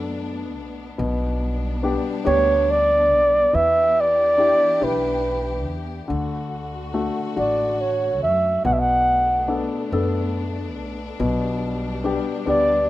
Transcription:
0.00 0.57 F#2 medium
0.00 0.96 B2 medium
0.00 0.95 A3 medium
0.00 1.02 B3 soft
0.00 6.06 B3 medium
0.00 0.97 D4 medium
0.00 1.01 D4 soft
0.00 1.01 A4 medium
0.57 0.89 B1 medium
0.98 1.96 B1 medium
0.98 3.49 B2 medium
0.98 3.52 G3 medium
0.98 3.51 D4 medium
1.83 2.23 B3 soft
1.83 2.23 D4 soft
1.83 2.24 G4 medium
2.25 3.12 D2 loud
2.25 3.08 B3 soft
2.25 3.08 D4 soft
2.25 3.09 G4 medium
2.25 2.72 C#5 medium
2.70 3.56 D5 loud
3.12 3.44 B1 medium
3.53 4.52 E2 medium
3.53 6.05 E3 medium
3.53 6.07 E3 medium
3.53 6.07 D4 medium
3.53 6.07 G4 medium
3.53 4.02 E5 medium
4.00 4.85 D5 medium
4.37 4.79 D4 soft
4.37 4.80 E4 soft
4.37 4.80 G4 soft
4.81 5.67 B1 medium
4.81 5.64 D4 soft
4.81 5.64 E4 soft
4.81 5.64 G4 soft
4.81 5.79 B4 medium
5.67 5.99 E2 medium
6.08 7.08 D2 medium
6.08 8.60 D3 medium
6.08 8.63 D3 medium
6.08 8.63 A3 medium
6.08 8.63 F#4 medium
6.94 7.77 A3 soft
6.94 7.35 D4 soft
6.94 7.35 F#4 medium
7.36 8.23 A1 medium
7.36 8.19 D4 soft
7.36 8.20 F#4 medium
7.36 7.82 D5 medium
7.81 8.22 C#5 medium
8.23 8.55 F#2 medium
8.23 8.62 E5 medium
8.65 9.62 B1 medium
8.65 11.15 B2 medium
8.65 11.17 A3 medium
8.65 11.17 B3 medium
8.65 12.90 D4 medium
8.65 8.75 F#5 medium
8.73 8.81 E5 medium
8.80 9.61 F#5 loud
9.48 9.91 B3 soft
9.48 9.91 D4 soft
9.48 9.91 A4 medium
9.92 10.77 F#2 medium
9.92 10.75 B3 soft
9.92 10.75 D4 soft
9.92 10.75 A4 medium
10.77 11.10 B1 medium
11.19 12.17 B1 medium
11.19 12.90 B2 medium
11.19 12.90 G3 medium
11.19 12.90 B3 medium
12.04 12.45 B3 soft
12.04 12.45 D4 soft
12.04 12.46 G4 medium
12.46 12.90 D2 medium
12.46 12.90 B3 soft
12.46 12.90 D4 soft
12.46 12.90 G4 soft
12.46 12.90 D5 medium

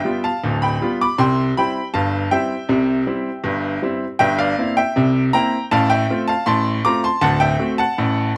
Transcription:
0.00 0.22 E5 medium
0.00 0.22 G5 loud
0.05 0.26 G3 medium
0.05 0.26 B3 medium
0.05 0.27 F4 medium
0.24 0.60 F5 medium
0.24 0.54 A5 medium
0.44 0.76 D1 medium
0.44 0.76 D2 medium
0.62 0.98 G5 medium
0.62 0.98 B5 loud
0.82 1.02 G3 medium
0.82 1.03 B3 medium
0.82 1.03 F4 medium
1.01 1.19 B5 medium
1.01 1.20 D6 loud
1.18 1.51 C2 medium
1.18 1.51 C3 loud
1.18 1.55 G5 medium
1.18 1.49 C6 loud
1.57 1.78 G3 medium
1.57 1.79 C4 medium
1.57 1.79 E4 medium
1.57 1.93 G5 medium
1.57 1.87 B5 loud
1.94 2.26 G1 medium
1.94 2.26 G2 medium
1.94 2.30 F5 medium
1.94 2.30 A5 loud
2.31 2.53 G3 medium
2.31 2.53 C4 medium
2.31 2.53 E4 medium
2.31 3.79 E5 medium
2.31 3.79 G5 loud
2.69 3.01 C2 medium
2.69 3.02 C3 loud
3.07 3.28 G3 medium
3.07 3.28 C4 medium
3.07 3.28 E4 medium
3.44 3.76 G1 medium
3.44 3.76 G2 medium
3.82 4.03 G3 medium
3.82 4.04 C4 medium
3.82 4.04 E4 medium
4.19 4.52 G1 medium
4.19 4.52 G2 loud
4.19 4.38 E5 medium
4.19 4.39 G5 loud
4.39 4.75 D5 medium
4.39 4.75 F5 loud
4.58 4.79 A#3 medium
4.58 4.79 C4 medium
4.58 4.79 E4 medium
4.77 5.30 E5 medium
4.77 5.22 G5 loud
4.96 5.28 C2 medium
4.96 5.28 C3 medium
5.33 5.54 A#3 medium
5.33 5.55 C4 medium
5.33 5.55 E4 medium
5.33 5.69 G5 medium
5.33 5.64 A#5 loud
5.71 6.04 A1 loud
5.71 6.04 A2 loud
5.71 5.90 F5 loud
5.71 5.90 A5 loud
5.90 6.26 E5 medium
5.90 6.20 G5 loud
6.10 6.31 A3 medium
6.10 6.31 C4 medium
6.10 6.31 F4 medium
6.28 6.46 F5 medium
6.28 6.46 A5 loud
6.46 6.79 A1 loud
6.46 6.79 A2 medium
6.46 6.82 A5 medium
6.46 6.82 C6 loud
6.85 7.06 A3 medium
6.85 7.06 C4 medium
6.85 7.06 F4 medium
6.85 7.03 A#5 loud
6.85 7.04 D6 loud
7.04 7.20 A5 medium
7.04 7.23 C6 loud
7.21 7.54 D1 medium
7.21 7.54 D2 loud
7.21 7.40 F#5 medium
7.21 7.41 A5 loud
7.40 7.76 E5 medium
7.40 7.71 G5 loud
7.59 7.80 A3 medium
7.59 7.81 C4 medium
7.59 7.81 F#4 medium
7.78 8.32 F#5 medium
7.78 8.32 A5 loud
7.98 8.30 A1 medium
7.98 8.30 A2 medium

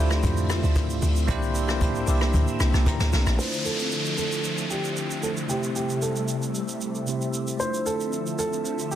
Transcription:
0.00 0.22 D2 loud
0.00 3.35 D3 medium
0.00 1.27 F3 medium
0.00 1.31 A3 loud
0.00 3.35 C4 medium
0.00 1.28 D4 loud
0.00 1.29 E4 loud
0.00 1.30 F4 loud
0.00 0.83 G4 medium
0.00 1.30 C5 loud
0.00 3.35 E5 medium
0.11 cross-stick medium
0.11 high bongo medium
0.11 shaker medium
0.23 0.62 F2 medium
0.23 kick loud
0.23 hi-hat pedal medium
0.23 low conga medium
0.23 shaker medium
0.37 shaker medium
0.50 cross-stick loud
0.50 open hi-hat medium
0.50 high bongo medium
0.50 low bongo medium
0.50 shaker medium
0.63 1.01 D2 medium
0.63 shaker soft
0.76 kick loud
0.76 hi-hat pedal medium
0.76 high bongo medium
0.76 shaker medium
0.90 shaker medium
1.02 1.28 D2 loud
1.02 open hi-hat medium
1.02 low bongo medium
1.02 shaker medium
1.16 shaker medium
1.27 2.04 C2 loud
1.27 1.60 A#3 loud
1.27 3.37 A#3 medium
1.27 1.60 D4 loud
1.27 1.61 E4 loud
1.27 1.61 G4 loud
1.27 1.61 C5 loud
1.27 kick loud
1.27 hi-hat pedal medium
1.27 low conga medium
1.27 shaker medium
1.42 shaker medium
1.55 open hi-hat medium
1.55 shaker loud
1.67 1.99 A#3 medium
1.67 2.00 D4 medium
1.67 2.00 E4 medium
1.67 2.01 G4 medium
1.67 2.01 C5 loud
1.67 cross-stick medium
1.67 shaker medium
1.81 kick loud
1.81 hi-hat pedal medium
1.81 high bongo medium
1.81 low conga medium
1.81 shaker medium
1.95 shaker soft
2.06 2.33 C2 loud
2.06 2.91 A#3 medium
2.06 2.92 D4 medium
2.06 2.92 E4 medium
2.06 2.93 G4 medium
2.06 2.93 D5 medium
2.06 open hi-hat medium
2.06 shaker loud
2.21 cross-stick loud
2.21 high bongo medium
2.21 shaker medium
2.34 2.47 D2 loud
2.34 kick loud
2.34 hi-hat pedal medium
2.34 low conga medium
2.34 shaker medium
2.47 shaker medium
2.60 2.73 C2 medium
2.60 2.85 G5 medium
2.60 cross-stick loud
2.60 open hi-hat medium
2.60 high bongo medium
2.60 low bongo medium
2.60 shaker medium
2.74 2.86 C2 medium
2.74 cross-stick medium
2.74 shaker soft
2.86 3.36 A#5 medium
2.86 kick loud
2.86 hi-hat pedal medium
2.86 high bongo medium
2.86 shaker medium
3.00 3.12 D2 medium
3.00 snare medium
3.00 shaker medium
3.13 3.26 C2 loud
3.13 snare medium
3.13 open hi-hat medium
3.13 low bongo medium
3.13 shaker medium
3.26 3.39 A#1 medium
3.26 cross-stick loud
3.26 shaker medium
3.36 5.48 D3 medium
3.36 5.48 F3 medium
3.36 5.18 A3 medium
3.36 5.48 C4 medium
3.36 5.19 D4 medium
3.36 5.20 E4 medium
3.36 3.66 C5 loud
3.36 8.95 E5 medium
3.36 downlifter medium
3.36 shaker medium
3.41 5.21 F4 medium
3.41 3.48 B4 medium
3.49 5.24 C5 medium
3.49 shaker soft
3.65 4.16 A4 loud
3.65 shaker medium
3.79 shaker soft
3.92 shaker medium
4.05 shaker soft
4.18 4.67 A4 loud
4.18 shaker medium
4.32 shaker medium
4.44 shaker medium
4.58 shaker medium
4.70 5.19 G4 medium
4.70 shaker medium
4.84 shaker soft
4.97 shaker medium
5.11 shaker medium
5.22 5.47 A3 soft
5.22 5.49 D4 soft
5.22 5.50 E4 soft
5.22 5.50 F4 soft
5.22 5.29 A4 medium
5.22 5.51 C5 medium
5.22 shaker medium
5.37 shaker medium
5.47 7.03 C3 medium
5.47 7.58 C3 medium
5.47 7.58 G3 medium
5.47 7.04 A3 medium
5.47 7.58 A3 medium
5.47 7.04 C4 medium
5.47 7.05 E4 medium
5.47 5.55 G4 medium
5.47 shaker medium
5.52 7.06 G4 medium
5.52 7.06 C5 medium
5.63 shaker soft
5.76 6.03 G4 medium
5.76 shaker medium
5.89 shaker soft
6.02 7.30 A4 medium
6.02 shaker medium
6.16 shaker soft
6.28 shaker medium
6.42 shaker medium
6.55 shaker medium
6.69 shaker medium
6.81 shaker medium
6.95 shaker soft
7.06 7.60 C3 medium
7.06 7.56 A3 medium
7.06 7.60 C4 medium
7.06 7.59 E4 medium
7.06 7.61 G4 medium
7.06 7.61 C5 medium
7.06 shaker medium
7.21 shaker soft
7.34 shaker medium
7.48 shaker medium
7.57 8.95 D3 medium
7.57 8.95 F3 medium
7.57 8.95 A3 medium
7.57 8.95 C4 medium
7.57 8.95 D4 medium
7.57 8.95 E4 medium
7.57 7.87 C5 loud
7.57 shaker medium
7.62 8.95 F4 medium
7.62 8.95 C5 medium
7.74 shaker soft
7.86 8.37 A4 loud
7.86 shaker medium
8.00 shaker soft
8.13 shaker medium
8.27 shaker soft
8.39 8.93 A4 loud
8.39 shaker medium
8.53 shaker medium
8.65 shaker medium
8.79 shaker medium
8.91 8.95 G4 medium
8.91 shaker medium

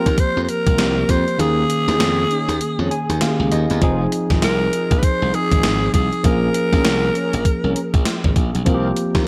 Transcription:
0.00 0.75 F3 medium
0.00 0.75 A#3 medium
0.00 0.75 C4 medium
0.00 0.76 G4 loud
0.00 0.21 A#4 loud
0.06 0.16 D#2 loud
0.06 kick medium
0.06 closed hi-hat medium
0.18 0.43 C5 loud
0.18 kick loud
0.18 closed hi-hat medium
0.37 0.46 F2 medium
0.44 0.51 C5 medium
0.49 1.12 A#4 loud
0.49 closed hi-hat medium
0.67 0.76 C2 medium
0.67 0.82 C4 medium
0.67 0.83 F4 medium
0.67 0.83 A#4 medium
0.67 kick loud
0.67 closed hi-hat medium
0.78 1.03 C2 medium
0.78 1.39 F3 soft
0.78 1.37 A#3 soft
0.78 1.40 C4 soft
0.78 1.40 G4 medium
0.78 snare loud
0.78 closed hi-hat medium
1.09 1.24 F2 medium
1.09 1.41 C5 loud
1.09 kick medium
1.09 closed hi-hat medium
1.28 closed hi-hat soft
1.38 1.63 D#2 loud
1.38 3.17 D#3 medium
1.38 3.17 A#3 medium
1.38 3.18 C#4 medium
1.38 3.52 G#4 loud
1.38 3.18 G#4 medium
1.38 closed hi-hat medium
1.70 closed hi-hat medium
1.88 1.97 D#2 medium
1.88 2.04 C#4 medium
1.88 2.04 D#4 medium
1.88 2.04 G#4 medium
1.88 snare medium
1.88 closed hi-hat soft
2.00 2.24 F2 medium
2.00 snare loud
2.00 closed hi-hat medium
2.30 2.51 C#4 medium
2.30 2.51 D#4 medium
2.30 2.51 G#4 medium
2.30 closed hi-hat medium
2.48 2.58 D#2 medium
2.48 closed hi-hat medium
2.61 closed hi-hat medium
2.78 2.88 F2 medium
2.78 2.94 C#4 medium
2.78 2.95 D#4 medium
2.78 2.95 G#4 medium
2.91 3.19 G#5 medium
2.91 closed hi-hat medium
3.09 3.19 D#2 medium
3.09 closed hi-hat medium
3.21 3.82 D#3 medium
3.21 3.82 A#3 medium
3.21 3.82 C#4 soft
3.21 3.29 G4 medium
3.21 3.50 F5 medium
3.21 snare loud
3.21 closed hi-hat medium
3.28 3.82 G#4 medium
3.40 3.49 C#2 medium
3.52 3.66 D#2 medium
3.52 3.80 D#5 medium
3.52 closed hi-hat medium
3.70 3.80 E2 medium
3.70 closed hi-hat soft
3.81 4.06 F1 loud
3.81 5.30 F3 medium
3.81 5.30 C4 medium
3.81 4.02 D#4 medium
3.81 5.31 D#4 medium
3.81 4.03 F4 medium
3.81 4.03 G#4 medium
3.81 5.31 G#4 medium
3.81 kick loud
3.81 closed hi-hat medium
4.12 closed hi-hat medium
4.30 4.40 G#1 medium
4.30 4.46 D#4 medium
4.30 4.46 F4 medium
4.30 4.46 G#4 medium
4.30 kick medium
4.30 snare medium
4.30 closed hi-hat soft
4.42 4.67 C2 loud
4.42 5.00 A#4 loud
4.42 snare loud
4.42 closed hi-hat medium
4.72 4.93 D#4 medium
4.72 4.94 F4 medium
4.72 4.94 G#4 medium
4.72 closed hi-hat medium
4.91 5.01 A#1 medium
4.91 kick medium
4.91 closed hi-hat medium
4.98 5.06 B4 medium
5.03 5.36 C5 loud
5.03 kick loud
5.03 closed hi-hat medium
5.22 5.31 C2 medium
5.33 6.22 F3 soft
5.33 6.24 C4 soft
5.33 6.24 D#4 soft
5.33 6.24 G#4 medium
5.33 5.94 G#4 loud
5.33 closed hi-hat medium
5.51 5.61 G#1 loud
5.51 5.67 D#4 medium
5.51 5.67 F4 medium
5.51 5.68 G#4 medium
5.51 kick loud
5.51 closed hi-hat medium
5.63 5.88 G#1 medium
5.63 snare loud
5.63 closed hi-hat medium
5.94 6.09 C2 medium
5.94 6.26 G#4 medium
5.94 kick medium
5.94 closed hi-hat medium
6.13 closed hi-hat soft
6.23 6.48 A#1 loud
6.23 8.62 F3 medium
6.23 8.63 A#3 medium
6.23 8.63 C#4 medium
6.23 8.63 G#4 medium
6.23 8.37 A#4 loud
6.23 kick loud
6.23 closed hi-hat medium
6.54 closed hi-hat medium
6.72 6.82 A#1 medium
6.72 6.88 C#4 medium
6.72 6.88 G#4 medium
6.72 6.89 A#4 medium
6.72 kick medium
6.72 snare medium
6.72 closed hi-hat soft
6.85 7.09 C2 medium
6.85 snare loud
6.85 closed hi-hat medium
7.15 7.36 C#4 medium
7.15 7.36 G#4 medium
7.15 7.36 A#4 medium
7.15 closed hi-hat medium
7.33 7.43 A#1 medium
7.33 closed hi-hat medium
7.45 kick loud
7.45 closed hi-hat medium
7.63 7.73 C2 medium
7.63 7.79 C#4 medium
7.63 7.79 G#4 medium
7.63 7.80 A#4 medium
7.76 closed hi-hat medium
7.94 8.03 A#1 medium
7.94 kick loud
7.94 closed hi-hat medium
8.05 snare loud
8.05 closed hi-hat medium
8.24 8.34 G#1 medium
8.24 kick medium
8.36 8.51 A#1 loud
8.36 kick medium
8.36 closed hi-hat medium
8.55 8.64 B1 medium
8.55 closed hi-hat soft
8.65 8.91 C2 loud
8.65 9.28 F3 medium
8.65 9.28 A#3 medium
8.65 8.87 C4 medium
8.65 9.28 C4 medium
8.65 8.87 F4 medium
8.65 8.75 F4 medium
8.65 8.88 A#4 loud
8.65 kick loud
8.65 closed hi-hat medium
8.74 9.28 G4 medium
8.96 closed hi-hat medium
9.15 9.25 D#2 medium
9.15 9.28 C4 medium
9.15 9.28 F4 medium
9.15 9.28 A#4 medium
9.15 kick medium
9.15 snare medium
9.15 closed hi-hat soft

